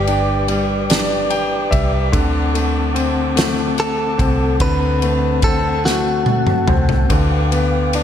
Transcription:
0.00 1.68 G1 loud
0.00 0.48 G3 medium
0.00 0.08 D4 medium
0.00 1.69 G4 medium
0.00 2.09 B4 medium
0.00 2.09 D5 medium
0.00 2.09 G5 medium
0.00 4.56 D6 medium
0.07 0.88 D4 medium
0.07 ride soft
0.48 1.69 G3 medium
0.48 ride soft
0.90 2.10 D4 medium
0.90 snare loud
0.90 ride medium
1.30 1.69 G5 medium
1.30 ride soft
1.71 2.11 C2 medium
1.71 2.12 G3 medium
1.71 2.10 E5 medium
1.71 kick medium
1.71 ride medium
2.12 4.15 D2 loud
2.12 4.56 D3 medium
2.12 7.06 C4 medium
2.12 7.06 F#5 medium
2.12 7.06 A5 medium
2.12 kick loud
2.12 ride medium
2.54 3.34 A3 medium
2.54 ride soft
2.95 4.16 C4 medium
2.95 ride soft
3.36 4.97 A3 medium
3.36 snare loud
3.36 ride medium
3.78 4.57 A4 medium
3.78 ride soft
4.18 4.58 C2 medium
4.18 5.43 C4 medium
4.18 kick medium
4.18 ride medium
4.60 6.64 D2 loud
4.60 7.06 D3 medium
4.60 5.44 B4 loud
4.60 kick loud
4.60 ride medium
5.02 5.83 A3 medium
5.02 ride soft
5.42 6.68 C4 medium
5.42 5.82 A4 medium
5.42 kick loud
5.42 ride soft
5.85 7.06 A3 medium
5.85 6.75 F#4 medium
5.85 snare medium
6.26 high tom medium
6.47 mid tom medium
6.68 7.08 C2 medium
6.68 7.09 C4 medium
6.68 mid tom loud
6.89 floor tom medium
7.09 8.03 D2 loud
7.09 8.03 D3 medium
7.09 8.03 B4 medium
7.09 8.03 F5 medium
7.09 8.03 G5 medium
7.09 8.03 D6 medium
7.09 kick loud
7.09 ride medium
7.52 8.03 B3 medium
7.52 ride soft
7.93 8.03 D4 medium
7.93 ride soft

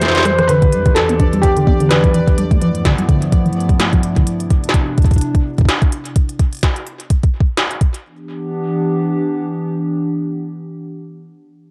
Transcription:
0.00 0.48 F2 medium
0.00 0.48 E3 medium
0.00 0.06 A3 medium
0.00 0.48 G4 medium
0.00 0.48 A4 medium
0.00 0.50 C5 loud
0.00 0.20 E5 medium
0.00 snare medium
0.00 closed hi-hat loud
0.05 snare medium
0.08 snare medium
0.11 cross-stick soft
0.11 snare medium
0.15 snare medium
0.15 closed hi-hat soft
0.17 snare medium
0.20 snare medium
0.23 0.32 G3 medium
0.23 cross-stick medium
0.23 snare loud
0.23 closed hi-hat medium
0.38 0.42 E3 medium
0.38 cross-stick medium
0.38 closed hi-hat soft
0.47 2.36 E2 medium
0.47 0.74 D3 loud
0.47 2.36 E3 medium
0.47 2.36 D4 medium
0.47 2.36 G4 medium
0.47 0.92 B4 loud
0.47 4.28 D5 medium
0.47 closed hi-hat loud
0.62 kick loud
0.62 closed hi-hat soft
0.72 0.83 G3 medium
0.72 closed hi-hat medium
0.86 0.91 E3 medium
0.86 kick loud
0.86 closed hi-hat soft
0.95 1.44 A4 loud
0.95 snare loud
0.95 closed hi-hat loud
1.09 1.15 B3 medium
1.09 closed hi-hat soft
1.20 1.30 D4 medium
1.20 kick loud
1.20 closed hi-hat medium
1.33 1.41 G3 loud
1.33 closed hi-hat soft
1.42 1.86 G4 medium
1.42 kick loud
1.42 closed hi-hat loud
1.57 1.65 D3 medium
1.57 closed hi-hat soft
1.67 1.74 B3 medium
1.67 kick loud
1.80 2.05 D3 loud
1.80 closed hi-hat soft
1.89 2.34 B4 medium
1.89 snare loud
1.89 closed hi-hat loud
2.04 2.12 G3 medium
2.04 kick loud
2.04 closed hi-hat soft
2.14 2.21 E3 medium
2.14 closed hi-hat medium
2.27 kick loud
2.27 closed hi-hat soft
2.38 4.25 G2 medium
2.38 4.25 F3 medium
2.38 2.45 G3 medium
2.38 4.25 A3 medium
2.38 6.12 B3 medium
2.38 6.12 E4 medium
2.38 closed hi-hat loud
2.51 2.59 A3 medium
2.51 kick loud
2.51 closed hi-hat soft
2.61 2.72 F3 loud
2.61 closed hi-hat medium
2.75 closed hi-hat soft
2.85 2.95 D3 medium
2.85 kick loud
2.85 snare loud
2.85 closed hi-hat loud
2.98 3.04 G3 medium
2.98 closed hi-hat soft
3.09 3.34 D3 loud
3.09 kick loud
3.09 closed hi-hat medium
3.22 closed hi-hat soft
3.32 3.42 F3 medium
3.32 kick loud
3.32 closed hi-hat loud
3.46 3.51 E3 medium
3.46 closed hi-hat soft
3.53 closed hi-hat soft
3.60 closed hi-hat soft
3.69 3.74 G3 medium
3.69 kick loud
3.69 closed hi-hat soft
3.80 3.90 A3 medium
3.80 snare loud
3.80 closed hi-hat medium
3.93 4.01 F3 loud
3.93 kick loud
3.93 closed hi-hat soft
4.03 closed hi-hat medium
4.16 4.24 D3 medium
4.16 kick loud
4.16 closed hi-hat soft
4.27 6.14 C3 medium
4.27 6.14 D4 medium
4.27 closed hi-hat loud
4.40 closed hi-hat soft
4.50 kick loud
4.50 closed hi-hat medium
4.64 closed hi-hat soft
4.69 snare loud
4.74 kick loud
4.74 closed hi-hat medium
4.98 kick loud
4.98 closed hi-hat soft
5.02 kick medium
5.02 closed hi-hat soft
5.06 closed hi-hat soft
5.11 kick medium
5.11 closed hi-hat soft
5.13 kick medium
5.13 closed hi-hat soft
5.18 closed hi-hat medium
5.21 closed hi-hat medium
5.35 kick loud
5.35 closed hi-hat soft
5.58 kick loud
5.58 closed hi-hat soft
5.61 kick medium
5.65 kick medium
5.65 snare loud
5.65 closed hi-hat medium
5.82 kick loud
5.82 closed hi-hat soft
5.92 closed hi-hat medium
6.05 closed hi-hat soft
6.16 kick loud
6.16 closed hi-hat medium
6.29 closed hi-hat soft
6.39 kick loud
6.39 closed hi-hat medium
6.53 closed hi-hat soft
6.55 closed hi-hat soft
6.57 closed hi-hat soft
6.59 closed hi-hat soft
6.61 snare loud
6.61 closed hi-hat soft
6.63 kick loud
6.63 closed hi-hat medium
6.76 closed hi-hat soft
6.87 closed hi-hat medium
7.00 closed hi-hat soft
7.10 kick loud
7.10 closed hi-hat medium
7.23 kick loud
7.23 closed hi-hat soft
7.41 kick loud
7.57 snare loud
7.57 closed hi-hat medium
7.71 closed hi-hat soft
7.81 kick loud
7.81 closed hi-hat medium
7.94 closed hi-hat soft
8.04 11.04 E3 medium
8.04 11.03 B3 medium
8.04 11.04 D4 medium
8.04 11.04 G4 medium

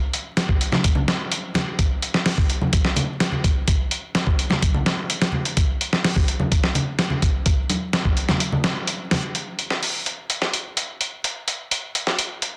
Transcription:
0.14 closed hi-hat medium
0.37 snare loud
0.37 closed hi-hat medium
0.49 kick loud
0.61 closed hi-hat medium
0.72 snare soft
0.72 high conga medium
0.72 low conga medium
0.84 kick loud
0.84 closed hi-hat medium
0.95 low conga medium
1.08 snare loud
1.08 closed hi-hat medium
1.32 closed hi-hat medium
1.54 snare loud
1.54 closed hi-hat medium
1.54 low conga medium
1.79 kick loud
1.79 closed hi-hat medium
2.02 closed hi-hat medium
2.14 snare soft
2.26 snare loud
2.26 open hi-hat medium
2.38 kick loud
2.50 closed hi-hat medium
2.61 high conga medium
2.61 low conga medium
2.73 kick loud
2.73 closed hi-hat medium
2.85 snare soft
2.96 closed hi-hat medium
2.96 low conga loud
3.20 snare loud
3.20 closed hi-hat medium
3.32 low conga medium
3.44 kick medium
3.44 closed hi-hat medium
3.68 kick loud
3.68 closed hi-hat medium
3.91 closed hi-hat medium
4.15 snare loud
4.15 closed hi-hat medium
4.27 kick medium
4.39 closed hi-hat medium
4.50 snare soft
4.50 high conga medium
4.50 low conga medium
4.62 kick loud
4.62 closed hi-hat medium
4.74 low conga medium
4.86 snare loud
4.86 closed hi-hat medium
5.10 closed hi-hat medium
5.22 snare loud
5.22 closed hi-hat medium
5.32 low conga medium
5.45 closed hi-hat medium
5.57 kick loud
5.57 closed hi-hat medium
5.81 closed hi-hat medium
5.93 snare soft
6.04 snare loud
6.04 open hi-hat medium
6.16 kick medium
6.28 closed hi-hat medium
6.40 high conga medium
6.40 low conga medium
6.52 kick loud
6.52 closed hi-hat medium
6.64 snare soft
6.75 closed hi-hat medium
6.75 low conga medium
6.99 snare loud
6.99 closed hi-hat medium
7.10 low conga medium
7.22 kick medium
7.22 closed hi-hat medium
7.46 kick loud
7.46 closed hi-hat medium
7.70 closed hi-hat medium
7.70 high conga medium
7.93 snare loud
7.93 closed hi-hat medium
8.05 kick loud
8.17 closed hi-hat medium
8.29 snare soft
8.29 high conga medium
8.29 low conga loud
8.40 closed hi-hat medium
8.52 low conga loud
8.64 snare loud
8.64 closed hi-hat medium
8.87 closed hi-hat medium
9.11 snare loud
9.11 open hi-hat medium
9.11 low conga medium
9.35 closed hi-hat medium
9.59 closed hi-hat medium
9.70 snare soft
9.83 open hi-hat medium
10.06 closed hi-hat medium
10.30 closed hi-hat medium
10.42 snare soft
10.53 closed hi-hat medium
10.77 closed hi-hat medium
11.01 closed hi-hat medium
11.24 closed hi-hat medium
11.48 closed hi-hat medium
11.71 closed hi-hat medium
11.95 closed hi-hat medium
12.07 snare soft
12.19 closed hi-hat medium
12.42 closed hi-hat medium

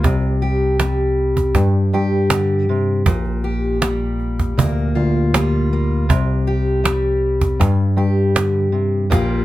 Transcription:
0.00 1.55 C3 medium
0.00 0.79 G3 medium
0.04 1.52 C2 medium
0.04 cajon bass medium
0.04 cajon slap soft
0.42 1.94 G4 medium
0.80 3.81 G3 medium
0.80 cajon slap medium
1.37 cajon bass medium
1.37 cajon slap soft
1.55 3.02 G2 medium
1.55 1.92 G2 loud
1.55 cajon bass medium
1.55 cajon slap soft
1.93 3.07 G2 medium
1.93 3.44 G4 medium
1.93 cajon slap soft
2.30 2.69 D3 medium
2.30 cajon slap loud
2.69 3.06 C3 medium
3.06 4.54 A#1 medium
3.06 4.56 A#2 medium
3.06 cajon bass loud
3.06 cajon slap soft
3.25 cajon slap soft
3.44 5.34 G4 medium
3.81 5.33 G3 medium
3.81 cajon slap medium
4.20 cajon slap soft
4.39 cajon bass medium
4.39 cajon slap soft
4.57 4.94 D2 medium
4.57 6.09 A#2 medium
4.57 5.71 A#3 medium
4.57 cajon bass loud
4.77 cajon slap soft
4.95 6.09 D2 medium
4.95 5.33 F4 medium
4.95 cajon slap soft
5.34 6.83 G3 medium
5.34 6.09 F4 medium
5.34 cajon slap loud
5.73 6.10 A#3 medium
6.09 7.56 C2 medium
6.09 7.60 C3 medium
6.09 cajon bass loud
6.09 cajon slap soft
6.47 7.97 G4 medium
6.84 9.10 G3 medium
6.84 cajon slap loud
7.41 cajon bass medium
7.41 cajon slap soft
7.59 9.06 G2 medium
7.59 7.96 G2 medium
7.59 cajon bass medium
7.59 cajon slap soft
7.97 9.11 G2 medium
7.97 9.12 G4 medium
7.97 cajon slap soft
8.35 8.72 D3 medium
8.35 cajon slap loud
8.72 9.10 C3 medium
9.10 9.45 A#1 medium
9.10 9.45 A#2 medium
9.10 9.45 G3 medium
9.10 9.45 A#3 medium
9.10 9.45 F4 medium
9.10 9.45 G4 medium
9.10 cajon bass medium
9.10 cajon slap soft

